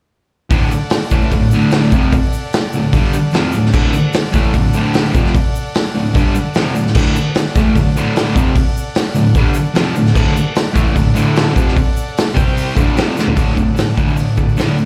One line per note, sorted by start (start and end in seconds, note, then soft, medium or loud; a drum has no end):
0.50 0.69 D2 medium
0.50 0.71 A2 medium
0.50 0.71 D3 loud
0.50 3.70 A4 medium
0.50 3.71 D5 medium
0.50 kick loud
0.50 open hi-hat medium
0.50 shaker medium
0.54 3.72 F#5 medium
0.70 muted distorted electric guitar stroke medium
0.70 shaker loud
0.90 snare loud
0.90 open hi-hat medium
0.90 shaker medium
1.10 1.31 A2 loud
1.10 1.32 E3 loud
1.10 1.32 A3 medium
1.10 kick loud
1.10 shaker medium
1.22 shaker soft
1.31 1.48 D2 medium
1.31 1.49 A2 medium
1.31 kick medium
1.31 open hi-hat medium
1.31 shaker medium
1.51 1.93 D2 medium
1.51 1.93 A2 loud
1.51 1.93 D3 loud
1.51 shaker medium
1.61 shaker soft
1.71 snare loud
1.71 open hi-hat medium
1.71 shaker medium
1.92 2.13 F2 medium
1.92 2.13 C3 medium
1.92 2.14 F3 loud
1.92 kick loud
1.92 shaker medium
2.02 shaker soft
2.12 kick loud
2.12 open hi-hat medium
2.12 shaker medium
2.33 shaker loud
2.53 snare loud
2.53 open hi-hat medium
2.53 shaker medium
2.73 2.90 D2 medium
2.73 2.90 A2 medium
2.73 shaker medium
2.82 shaker soft
2.93 3.13 G2 loud
2.93 3.14 D3 medium
2.93 3.14 G3 loud
2.93 kick loud
2.93 open hi-hat medium
2.93 shaker medium
3.13 muted distorted electric guitar stroke medium
3.13 shaker loud
3.31 3.53 F2 loud
3.31 3.54 C3 loud
3.31 3.54 F3 loud
3.31 snare loud
3.31 open hi-hat medium
3.31 shaker medium
3.52 3.70 D2 medium
3.52 3.70 A2 medium
3.52 shaker medium
3.66 snare soft
3.72 3.92 D2 loud
3.72 3.93 A2 medium
3.72 3.93 D3 medium
3.72 6.90 A4 medium
3.72 6.91 D5 medium
3.72 kick loud
3.72 crash loud
3.72 shaker medium
3.76 6.92 F#5 medium
3.93 muted distorted electric guitar stroke medium
3.93 shaker medium
4.13 snare loud
4.13 open hi-hat medium
4.13 shaker medium
4.32 4.53 A2 medium
4.32 4.53 E3 loud
4.32 4.54 A3 loud
4.32 kick loud
4.32 snare soft
4.32 shaker loud
4.43 shaker soft
4.54 4.70 D2 medium
4.54 4.70 A2 medium
4.54 kick medium
4.54 open hi-hat medium
4.54 shaker medium
4.73 5.12 D2 loud
4.73 5.14 A2 loud
4.73 5.14 D3 loud
4.73 shaker loud
4.94 snare loud
4.94 open hi-hat medium
4.94 shaker medium
5.12 5.33 F2 medium
5.12 5.34 C3 medium
5.12 5.34 F3 medium
5.12 kick loud
5.12 shaker medium
5.25 snare soft
5.25 shaker soft
5.35 kick loud
5.35 open hi-hat medium
5.35 shaker medium
5.55 shaker loud
5.66 shaker soft
5.74 snare loud
5.74 open hi-hat medium
5.74 shaker medium
5.95 6.11 D2 medium
5.95 6.11 A2 medium
6.06 shaker soft
6.13 6.33 G2 medium
6.13 6.34 D3 medium
6.13 6.35 G3 loud
6.13 kick loud
6.13 open hi-hat medium
6.13 shaker medium
6.35 muted distorted electric guitar stroke medium
6.35 shaker loud
6.54 6.74 F2 loud
6.54 6.75 C3 loud
6.54 6.76 F3 medium
6.54 snare loud
6.54 open hi-hat medium
6.54 shaker medium
6.74 6.91 D2 medium
6.74 6.91 A2 medium
6.74 shaker medium
6.87 snare soft
6.95 7.14 D2 medium
6.95 7.15 A2 medium
6.95 7.15 D3 loud
6.95 10.12 A4 medium
6.95 10.12 D5 medium
6.95 kick loud
6.95 crash loud
6.95 shaker medium
6.99 10.13 F#5 medium
7.15 muted distorted electric guitar stroke medium
7.15 shaker loud
7.35 snare loud
7.35 open hi-hat medium
7.35 shaker medium
7.56 7.75 A2 medium
7.56 7.75 E3 medium
7.56 7.76 A3 loud
7.56 kick loud
7.56 snare soft
7.56 shaker loud
7.75 7.92 D2 medium
7.75 7.92 A2 medium
7.75 kick medium
7.75 open hi-hat medium
7.75 shaker medium
7.96 8.34 D2 loud
7.96 8.35 A2 loud
7.96 8.35 D3 loud
7.96 shaker loud
8.16 snare loud
8.16 open hi-hat medium
8.16 shaker medium
8.35 8.54 F2 medium
8.35 8.55 C3 medium
8.35 8.55 F3 loud
8.35 kick loud
8.35 shaker loud
8.56 kick loud
8.56 open hi-hat medium
8.56 shaker medium
8.77 shaker loud
8.95 snare loud
8.95 open hi-hat medium
8.95 shaker medium
9.15 9.31 D2 medium
9.15 9.31 A2 medium
9.15 shaker loud
9.26 shaker soft
9.35 9.55 G2 loud
9.35 9.55 D3 loud
9.35 9.56 G3 loud
9.35 kick loud
9.35 open hi-hat medium
9.35 shaker medium
9.54 muted distorted electric guitar stroke medium
9.54 shaker loud
9.74 9.94 F2 loud
9.74 9.95 C3 medium
9.74 9.96 F3 loud
9.74 snare loud
9.74 open hi-hat medium
9.74 shaker medium
9.95 10.11 D2 medium
9.95 10.11 A2 medium
9.95 shaker medium
10.06 snare soft
10.13 10.34 D2 medium
10.13 10.35 A2 medium
10.13 10.35 D3 loud
10.13 12.31 A4 medium
10.13 12.32 D5 medium
10.13 12.32 F#5 medium
10.13 kick loud
10.13 crash loud
10.13 shaker medium
10.36 muted distorted electric guitar stroke medium
10.36 shaker loud
10.55 snare loud
10.55 open hi-hat medium
10.55 shaker medium
10.74 10.94 A2 medium
10.74 10.94 E3 medium
10.74 10.95 A3 loud
10.74 kick loud
10.74 shaker loud
10.78 snare soft
10.87 shaker soft
10.95 11.11 D2 medium
10.95 11.11 A2 medium
10.95 kick medium
10.95 open hi-hat medium
10.95 shaker medium
11.14 11.53 D2 loud
11.14 11.54 A2 loud
11.14 11.55 D3 loud
11.14 shaker loud
11.36 snare loud
11.36 open hi-hat medium
11.36 shaker medium
11.53 11.74 F2 medium
11.53 11.74 C3 medium
11.53 11.75 F3 medium
11.53 kick loud
11.53 shaker loud
11.68 snare soft
11.77 kick loud
11.77 open hi-hat medium
11.77 shaker medium
11.97 shaker loud
12.17 snare loud
12.17 open hi-hat medium
12.17 shaker medium
12.34 12.74 C3 loud
12.34 12.75 G3 loud
12.34 12.76 C4 loud
12.34 12.76 G4 medium
12.34 12.76 C5 medium
12.34 12.76 G5 medium
12.34 kick loud
12.34 shaker medium
12.47 shaker soft
12.57 open hi-hat medium
12.57 shaker medium
12.74 12.95 D2 medium
12.74 12.96 A2 medium
12.74 12.96 D3 loud
12.74 13.33 A4 medium
12.74 13.35 D5 medium
12.74 13.36 F#5 medium
12.74 kick medium
12.74 shaker loud
12.96 13.16 F2 medium
12.96 13.16 C3 loud
12.96 13.16 F3 loud
12.96 snare loud
12.96 open hi-hat medium
12.96 shaker medium
13.17 13.36 D2 medium
13.17 13.36 A2 loud
13.17 13.37 D3 medium
13.17 snare medium
13.17 shaker medium
13.28 floor tom loud
13.34 13.54 D2 medium
13.34 13.54 A2 medium
13.34 14.85 A4 medium
13.34 14.85 D5 medium
13.34 14.85 F#5 medium
13.34 kick loud
13.34 open hi-hat medium
13.34 shaker medium
13.39 13.57 D3 medium
13.55 13.74 D2 medium
13.55 13.74 A2 medium
13.55 kick medium
13.55 shaker medium
13.75 13.94 D2 medium
13.75 13.94 A2 medium
13.75 snare loud
13.75 open hi-hat medium
13.75 shaker medium
13.95 14.15 D2 medium
13.95 14.16 A2 medium
13.95 14.16 D3 loud
13.95 kick medium
13.95 shaker medium
14.08 shaker soft
14.17 14.35 D2 medium
14.17 14.35 A2 medium
14.17 open hi-hat medium
14.17 shaker loud
14.37 14.55 D2 medium
14.37 14.55 A2 medium
14.37 kick medium
14.37 shaker medium
14.49 shaker soft
14.57 14.76 D2 medium
14.57 14.77 A2 medium
14.57 14.77 D3 loud
14.57 snare loud
14.57 open hi-hat medium
14.57 shaker medium
14.67 shaker soft
14.78 14.85 D2 medium
14.78 14.85 A2 medium
14.78 shaker medium